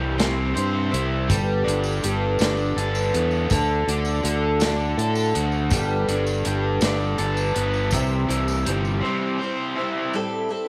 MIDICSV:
0, 0, Header, 1, 5, 480
1, 0, Start_track
1, 0, Key_signature, 1, "major"
1, 0, Tempo, 737101
1, 843, Time_signature, 6, 3, 24, 8
1, 6955, End_track
2, 0, Start_track
2, 0, Title_t, "Twelve-string acoustic guitar"
2, 0, Program_c, 0, 25
2, 0, Note_on_c, 0, 55, 61
2, 0, Note_on_c, 0, 60, 67
2, 0, Note_on_c, 0, 64, 60
2, 0, Note_on_c, 0, 72, 72
2, 111, Note_off_c, 0, 64, 0
2, 111, Note_off_c, 0, 72, 0
2, 113, Note_off_c, 0, 55, 0
2, 118, Note_off_c, 0, 60, 0
2, 119, Note_on_c, 0, 64, 63
2, 119, Note_on_c, 0, 72, 64
2, 121, Note_on_c, 0, 55, 65
2, 125, Note_on_c, 0, 48, 66
2, 126, Note_on_c, 0, 60, 67
2, 127, Note_on_c, 0, 52, 57
2, 350, Note_off_c, 0, 55, 0
2, 354, Note_off_c, 0, 60, 0
2, 358, Note_on_c, 0, 55, 58
2, 361, Note_off_c, 0, 64, 0
2, 361, Note_off_c, 0, 72, 0
2, 362, Note_on_c, 0, 60, 65
2, 364, Note_off_c, 0, 48, 0
2, 365, Note_off_c, 0, 52, 0
2, 372, Note_on_c, 0, 64, 68
2, 373, Note_on_c, 0, 72, 73
2, 590, Note_off_c, 0, 72, 0
2, 592, Note_off_c, 0, 64, 0
2, 598, Note_off_c, 0, 60, 0
2, 598, Note_on_c, 0, 72, 56
2, 599, Note_on_c, 0, 64, 43
2, 601, Note_off_c, 0, 55, 0
2, 606, Note_on_c, 0, 60, 49
2, 613, Note_on_c, 0, 55, 43
2, 838, Note_off_c, 0, 55, 0
2, 841, Note_off_c, 0, 64, 0
2, 841, Note_off_c, 0, 72, 0
2, 845, Note_off_c, 0, 60, 0
2, 846, Note_on_c, 0, 55, 80
2, 848, Note_on_c, 0, 62, 75
2, 850, Note_on_c, 0, 59, 74
2, 857, Note_on_c, 0, 69, 84
2, 1072, Note_off_c, 0, 69, 0
2, 1080, Note_on_c, 0, 69, 57
2, 1084, Note_off_c, 0, 59, 0
2, 1085, Note_off_c, 0, 55, 0
2, 1086, Note_off_c, 0, 62, 0
2, 1092, Note_on_c, 0, 59, 54
2, 1101, Note_on_c, 0, 62, 43
2, 1322, Note_off_c, 0, 69, 0
2, 1323, Note_on_c, 0, 55, 61
2, 1327, Note_off_c, 0, 62, 0
2, 1328, Note_off_c, 0, 59, 0
2, 1335, Note_on_c, 0, 62, 66
2, 1336, Note_on_c, 0, 59, 70
2, 1341, Note_on_c, 0, 69, 73
2, 1563, Note_off_c, 0, 55, 0
2, 1566, Note_off_c, 0, 69, 0
2, 1569, Note_off_c, 0, 62, 0
2, 1570, Note_off_c, 0, 59, 0
2, 1574, Note_on_c, 0, 69, 71
2, 1576, Note_on_c, 0, 59, 69
2, 1582, Note_on_c, 0, 62, 65
2, 1588, Note_on_c, 0, 55, 57
2, 1806, Note_off_c, 0, 55, 0
2, 1809, Note_off_c, 0, 69, 0
2, 1810, Note_off_c, 0, 59, 0
2, 1810, Note_off_c, 0, 62, 0
2, 1813, Note_on_c, 0, 55, 64
2, 1818, Note_on_c, 0, 62, 61
2, 1826, Note_on_c, 0, 59, 73
2, 1830, Note_on_c, 0, 69, 75
2, 2049, Note_off_c, 0, 55, 0
2, 2049, Note_off_c, 0, 69, 0
2, 2051, Note_off_c, 0, 62, 0
2, 2053, Note_off_c, 0, 59, 0
2, 2057, Note_on_c, 0, 69, 55
2, 2061, Note_on_c, 0, 59, 49
2, 2065, Note_on_c, 0, 62, 51
2, 2278, Note_off_c, 0, 62, 0
2, 2279, Note_on_c, 0, 50, 80
2, 2282, Note_off_c, 0, 69, 0
2, 2283, Note_off_c, 0, 59, 0
2, 2285, Note_on_c, 0, 66, 79
2, 2286, Note_on_c, 0, 62, 72
2, 2290, Note_on_c, 0, 69, 92
2, 2518, Note_off_c, 0, 69, 0
2, 2522, Note_off_c, 0, 50, 0
2, 2525, Note_off_c, 0, 62, 0
2, 2525, Note_off_c, 0, 66, 0
2, 2526, Note_on_c, 0, 69, 60
2, 2532, Note_on_c, 0, 66, 59
2, 2541, Note_on_c, 0, 62, 41
2, 2763, Note_off_c, 0, 62, 0
2, 2764, Note_on_c, 0, 50, 68
2, 2765, Note_off_c, 0, 69, 0
2, 2768, Note_off_c, 0, 66, 0
2, 2770, Note_on_c, 0, 62, 62
2, 2779, Note_on_c, 0, 66, 69
2, 2781, Note_on_c, 0, 69, 72
2, 2999, Note_off_c, 0, 69, 0
2, 3004, Note_off_c, 0, 50, 0
2, 3007, Note_off_c, 0, 62, 0
2, 3007, Note_on_c, 0, 69, 65
2, 3008, Note_off_c, 0, 66, 0
2, 3015, Note_on_c, 0, 66, 60
2, 3016, Note_on_c, 0, 62, 61
2, 3021, Note_on_c, 0, 50, 55
2, 3245, Note_off_c, 0, 69, 0
2, 3246, Note_off_c, 0, 50, 0
2, 3250, Note_off_c, 0, 62, 0
2, 3250, Note_off_c, 0, 66, 0
2, 3253, Note_on_c, 0, 50, 72
2, 3260, Note_on_c, 0, 62, 66
2, 3266, Note_on_c, 0, 66, 72
2, 3266, Note_on_c, 0, 69, 76
2, 3478, Note_off_c, 0, 69, 0
2, 3486, Note_on_c, 0, 69, 57
2, 3489, Note_off_c, 0, 50, 0
2, 3489, Note_off_c, 0, 66, 0
2, 3492, Note_off_c, 0, 62, 0
2, 3497, Note_on_c, 0, 66, 50
2, 3501, Note_on_c, 0, 62, 48
2, 3718, Note_off_c, 0, 62, 0
2, 3720, Note_on_c, 0, 55, 77
2, 3724, Note_off_c, 0, 66, 0
2, 3725, Note_off_c, 0, 69, 0
2, 3725, Note_on_c, 0, 62, 75
2, 3727, Note_on_c, 0, 59, 90
2, 3734, Note_on_c, 0, 69, 85
2, 3950, Note_off_c, 0, 69, 0
2, 3958, Note_on_c, 0, 69, 63
2, 3960, Note_off_c, 0, 59, 0
2, 3962, Note_off_c, 0, 55, 0
2, 3965, Note_off_c, 0, 62, 0
2, 3968, Note_on_c, 0, 59, 50
2, 3979, Note_on_c, 0, 62, 48
2, 4201, Note_off_c, 0, 69, 0
2, 4203, Note_off_c, 0, 62, 0
2, 4204, Note_on_c, 0, 55, 59
2, 4206, Note_off_c, 0, 59, 0
2, 4211, Note_on_c, 0, 62, 69
2, 4218, Note_on_c, 0, 59, 69
2, 4218, Note_on_c, 0, 69, 72
2, 4435, Note_off_c, 0, 69, 0
2, 4437, Note_off_c, 0, 59, 0
2, 4440, Note_off_c, 0, 55, 0
2, 4441, Note_off_c, 0, 62, 0
2, 4443, Note_on_c, 0, 69, 78
2, 4444, Note_on_c, 0, 59, 60
2, 4448, Note_on_c, 0, 55, 54
2, 4449, Note_on_c, 0, 62, 68
2, 4674, Note_off_c, 0, 55, 0
2, 4680, Note_off_c, 0, 62, 0
2, 4682, Note_on_c, 0, 55, 66
2, 4683, Note_off_c, 0, 69, 0
2, 4684, Note_off_c, 0, 59, 0
2, 4688, Note_on_c, 0, 62, 67
2, 4693, Note_on_c, 0, 59, 69
2, 4693, Note_on_c, 0, 69, 75
2, 4915, Note_off_c, 0, 69, 0
2, 4922, Note_off_c, 0, 55, 0
2, 4922, Note_on_c, 0, 69, 53
2, 4924, Note_off_c, 0, 59, 0
2, 4926, Note_off_c, 0, 62, 0
2, 4932, Note_on_c, 0, 59, 49
2, 4941, Note_on_c, 0, 62, 41
2, 5159, Note_on_c, 0, 48, 77
2, 5162, Note_off_c, 0, 69, 0
2, 5163, Note_off_c, 0, 59, 0
2, 5165, Note_off_c, 0, 62, 0
2, 5165, Note_on_c, 0, 52, 82
2, 5165, Note_on_c, 0, 64, 91
2, 5166, Note_on_c, 0, 55, 74
2, 5168, Note_on_c, 0, 60, 83
2, 5174, Note_on_c, 0, 72, 83
2, 5391, Note_off_c, 0, 72, 0
2, 5399, Note_on_c, 0, 72, 61
2, 5400, Note_off_c, 0, 64, 0
2, 5401, Note_off_c, 0, 48, 0
2, 5404, Note_off_c, 0, 52, 0
2, 5404, Note_off_c, 0, 55, 0
2, 5405, Note_off_c, 0, 60, 0
2, 5408, Note_on_c, 0, 64, 49
2, 5413, Note_on_c, 0, 60, 53
2, 5414, Note_on_c, 0, 55, 44
2, 5640, Note_off_c, 0, 72, 0
2, 5643, Note_off_c, 0, 55, 0
2, 5645, Note_off_c, 0, 60, 0
2, 5645, Note_off_c, 0, 64, 0
2, 5650, Note_on_c, 0, 55, 62
2, 5653, Note_on_c, 0, 60, 63
2, 5661, Note_on_c, 0, 64, 63
2, 5664, Note_on_c, 0, 72, 66
2, 5883, Note_off_c, 0, 72, 0
2, 5886, Note_off_c, 0, 55, 0
2, 5887, Note_off_c, 0, 60, 0
2, 5891, Note_off_c, 0, 64, 0
2, 5891, Note_on_c, 0, 72, 76
2, 5897, Note_on_c, 0, 55, 66
2, 5898, Note_on_c, 0, 64, 66
2, 5899, Note_on_c, 0, 52, 57
2, 5900, Note_on_c, 0, 60, 63
2, 5903, Note_on_c, 0, 48, 64
2, 6124, Note_off_c, 0, 55, 0
2, 6126, Note_off_c, 0, 72, 0
2, 6130, Note_off_c, 0, 52, 0
2, 6130, Note_off_c, 0, 64, 0
2, 6131, Note_off_c, 0, 60, 0
2, 6131, Note_on_c, 0, 55, 61
2, 6132, Note_off_c, 0, 48, 0
2, 6140, Note_on_c, 0, 60, 72
2, 6141, Note_on_c, 0, 64, 66
2, 6146, Note_on_c, 0, 72, 66
2, 6362, Note_off_c, 0, 72, 0
2, 6366, Note_off_c, 0, 55, 0
2, 6370, Note_off_c, 0, 60, 0
2, 6370, Note_on_c, 0, 72, 56
2, 6371, Note_off_c, 0, 64, 0
2, 6377, Note_on_c, 0, 64, 55
2, 6380, Note_on_c, 0, 60, 48
2, 6384, Note_on_c, 0, 55, 44
2, 6594, Note_off_c, 0, 55, 0
2, 6599, Note_on_c, 0, 45, 86
2, 6601, Note_on_c, 0, 55, 99
2, 6602, Note_off_c, 0, 60, 0
2, 6602, Note_off_c, 0, 64, 0
2, 6605, Note_off_c, 0, 72, 0
2, 6610, Note_on_c, 0, 60, 93
2, 6610, Note_on_c, 0, 64, 97
2, 6613, Note_on_c, 0, 69, 101
2, 6822, Note_off_c, 0, 55, 0
2, 6830, Note_on_c, 0, 55, 64
2, 6832, Note_off_c, 0, 64, 0
2, 6833, Note_off_c, 0, 60, 0
2, 6839, Note_off_c, 0, 45, 0
2, 6840, Note_off_c, 0, 69, 0
2, 6840, Note_on_c, 0, 64, 73
2, 6841, Note_on_c, 0, 60, 68
2, 6848, Note_on_c, 0, 69, 75
2, 6935, Note_off_c, 0, 69, 0
2, 6946, Note_off_c, 0, 64, 0
2, 6953, Note_off_c, 0, 60, 0
2, 6955, Note_off_c, 0, 55, 0
2, 6955, End_track
3, 0, Start_track
3, 0, Title_t, "Overdriven electric guitar"
3, 0, Program_c, 1, 29
3, 0, Note_on_c, 1, 48, 70
3, 0, Note_on_c, 1, 52, 58
3, 604, Note_off_c, 1, 48, 0
3, 843, Note_off_c, 1, 52, 0
3, 1070, Note_on_c, 1, 62, 56
3, 1562, Note_off_c, 1, 62, 0
3, 1801, Note_on_c, 1, 69, 62
3, 3240, Note_off_c, 1, 69, 0
3, 5393, Note_on_c, 1, 52, 57
3, 5864, Note_on_c, 1, 60, 70
3, 6114, Note_on_c, 1, 72, 67
3, 6591, Note_off_c, 1, 60, 0
3, 6596, Note_off_c, 1, 52, 0
3, 6597, Note_off_c, 1, 72, 0
3, 6955, End_track
4, 0, Start_track
4, 0, Title_t, "Fingered electric bass"
4, 0, Program_c, 2, 33
4, 0, Note_on_c, 2, 36, 80
4, 340, Note_off_c, 2, 36, 0
4, 367, Note_on_c, 2, 43, 84
4, 589, Note_off_c, 2, 43, 0
4, 607, Note_on_c, 2, 36, 77
4, 829, Note_off_c, 2, 36, 0
4, 844, Note_on_c, 2, 31, 94
4, 1067, Note_off_c, 2, 31, 0
4, 1089, Note_on_c, 2, 31, 90
4, 1309, Note_off_c, 2, 31, 0
4, 1330, Note_on_c, 2, 31, 78
4, 1550, Note_off_c, 2, 31, 0
4, 1565, Note_on_c, 2, 31, 83
4, 1787, Note_off_c, 2, 31, 0
4, 1800, Note_on_c, 2, 31, 86
4, 2025, Note_off_c, 2, 31, 0
4, 2046, Note_on_c, 2, 40, 81
4, 2268, Note_off_c, 2, 40, 0
4, 2285, Note_on_c, 2, 38, 92
4, 2508, Note_off_c, 2, 38, 0
4, 2524, Note_on_c, 2, 38, 81
4, 2747, Note_off_c, 2, 38, 0
4, 2761, Note_on_c, 2, 38, 89
4, 3217, Note_off_c, 2, 38, 0
4, 3240, Note_on_c, 2, 45, 91
4, 3465, Note_off_c, 2, 45, 0
4, 3488, Note_on_c, 2, 38, 75
4, 3720, Note_on_c, 2, 31, 102
4, 3730, Note_off_c, 2, 38, 0
4, 3945, Note_off_c, 2, 31, 0
4, 3961, Note_on_c, 2, 31, 87
4, 4185, Note_off_c, 2, 31, 0
4, 4208, Note_on_c, 2, 31, 83
4, 4429, Note_off_c, 2, 31, 0
4, 4440, Note_on_c, 2, 31, 83
4, 4665, Note_off_c, 2, 31, 0
4, 4681, Note_on_c, 2, 31, 88
4, 4905, Note_off_c, 2, 31, 0
4, 4923, Note_on_c, 2, 31, 80
4, 5146, Note_off_c, 2, 31, 0
4, 5165, Note_on_c, 2, 36, 98
4, 5387, Note_off_c, 2, 36, 0
4, 5398, Note_on_c, 2, 36, 90
4, 5623, Note_off_c, 2, 36, 0
4, 5642, Note_on_c, 2, 31, 78
4, 5865, Note_off_c, 2, 31, 0
4, 6955, End_track
5, 0, Start_track
5, 0, Title_t, "Drums"
5, 127, Note_on_c, 9, 42, 76
5, 131, Note_on_c, 9, 38, 105
5, 192, Note_off_c, 9, 42, 0
5, 196, Note_off_c, 9, 38, 0
5, 370, Note_on_c, 9, 42, 50
5, 435, Note_off_c, 9, 42, 0
5, 612, Note_on_c, 9, 42, 62
5, 677, Note_off_c, 9, 42, 0
5, 844, Note_on_c, 9, 54, 79
5, 846, Note_on_c, 9, 36, 99
5, 850, Note_on_c, 9, 42, 75
5, 910, Note_off_c, 9, 54, 0
5, 911, Note_off_c, 9, 36, 0
5, 915, Note_off_c, 9, 42, 0
5, 1096, Note_on_c, 9, 42, 54
5, 1161, Note_off_c, 9, 42, 0
5, 1195, Note_on_c, 9, 54, 61
5, 1260, Note_off_c, 9, 54, 0
5, 1319, Note_on_c, 9, 54, 28
5, 1327, Note_on_c, 9, 42, 62
5, 1384, Note_off_c, 9, 54, 0
5, 1392, Note_off_c, 9, 42, 0
5, 1556, Note_on_c, 9, 54, 83
5, 1571, Note_on_c, 9, 42, 76
5, 1575, Note_on_c, 9, 38, 105
5, 1621, Note_off_c, 9, 54, 0
5, 1636, Note_off_c, 9, 42, 0
5, 1640, Note_off_c, 9, 38, 0
5, 1674, Note_on_c, 9, 54, 25
5, 1739, Note_off_c, 9, 54, 0
5, 1809, Note_on_c, 9, 42, 55
5, 1874, Note_off_c, 9, 42, 0
5, 1920, Note_on_c, 9, 54, 66
5, 1985, Note_off_c, 9, 54, 0
5, 2047, Note_on_c, 9, 42, 58
5, 2112, Note_off_c, 9, 42, 0
5, 2155, Note_on_c, 9, 54, 24
5, 2220, Note_off_c, 9, 54, 0
5, 2278, Note_on_c, 9, 54, 80
5, 2286, Note_on_c, 9, 36, 103
5, 2289, Note_on_c, 9, 42, 77
5, 2343, Note_off_c, 9, 54, 0
5, 2351, Note_off_c, 9, 36, 0
5, 2354, Note_off_c, 9, 42, 0
5, 2530, Note_on_c, 9, 42, 57
5, 2595, Note_off_c, 9, 42, 0
5, 2636, Note_on_c, 9, 54, 59
5, 2701, Note_off_c, 9, 54, 0
5, 2758, Note_on_c, 9, 54, 28
5, 2766, Note_on_c, 9, 42, 61
5, 2823, Note_off_c, 9, 54, 0
5, 2831, Note_off_c, 9, 42, 0
5, 2995, Note_on_c, 9, 54, 85
5, 3004, Note_on_c, 9, 42, 80
5, 3008, Note_on_c, 9, 38, 113
5, 3060, Note_off_c, 9, 54, 0
5, 3069, Note_off_c, 9, 42, 0
5, 3073, Note_off_c, 9, 38, 0
5, 3119, Note_on_c, 9, 54, 22
5, 3184, Note_off_c, 9, 54, 0
5, 3249, Note_on_c, 9, 42, 55
5, 3314, Note_off_c, 9, 42, 0
5, 3356, Note_on_c, 9, 54, 63
5, 3421, Note_off_c, 9, 54, 0
5, 3485, Note_on_c, 9, 42, 60
5, 3551, Note_off_c, 9, 42, 0
5, 3594, Note_on_c, 9, 54, 24
5, 3659, Note_off_c, 9, 54, 0
5, 3714, Note_on_c, 9, 54, 84
5, 3722, Note_on_c, 9, 36, 105
5, 3724, Note_on_c, 9, 42, 73
5, 3779, Note_off_c, 9, 54, 0
5, 3787, Note_off_c, 9, 36, 0
5, 3789, Note_off_c, 9, 42, 0
5, 3963, Note_on_c, 9, 42, 57
5, 4028, Note_off_c, 9, 42, 0
5, 4080, Note_on_c, 9, 54, 64
5, 4145, Note_off_c, 9, 54, 0
5, 4200, Note_on_c, 9, 42, 59
5, 4265, Note_off_c, 9, 42, 0
5, 4433, Note_on_c, 9, 54, 85
5, 4440, Note_on_c, 9, 42, 76
5, 4444, Note_on_c, 9, 38, 109
5, 4499, Note_off_c, 9, 54, 0
5, 4506, Note_off_c, 9, 42, 0
5, 4509, Note_off_c, 9, 38, 0
5, 4558, Note_on_c, 9, 54, 25
5, 4624, Note_off_c, 9, 54, 0
5, 4678, Note_on_c, 9, 42, 51
5, 4743, Note_off_c, 9, 42, 0
5, 4798, Note_on_c, 9, 54, 66
5, 4863, Note_off_c, 9, 54, 0
5, 4921, Note_on_c, 9, 42, 57
5, 4986, Note_off_c, 9, 42, 0
5, 5038, Note_on_c, 9, 54, 25
5, 5103, Note_off_c, 9, 54, 0
5, 5149, Note_on_c, 9, 54, 93
5, 5161, Note_on_c, 9, 36, 101
5, 5164, Note_on_c, 9, 42, 75
5, 5214, Note_off_c, 9, 54, 0
5, 5227, Note_off_c, 9, 36, 0
5, 5230, Note_off_c, 9, 42, 0
5, 5400, Note_on_c, 9, 54, 29
5, 5408, Note_on_c, 9, 42, 59
5, 5465, Note_off_c, 9, 54, 0
5, 5473, Note_off_c, 9, 42, 0
5, 5522, Note_on_c, 9, 54, 69
5, 5587, Note_off_c, 9, 54, 0
5, 5642, Note_on_c, 9, 42, 56
5, 5707, Note_off_c, 9, 42, 0
5, 5762, Note_on_c, 9, 54, 30
5, 5827, Note_off_c, 9, 54, 0
5, 6955, End_track
0, 0, End_of_file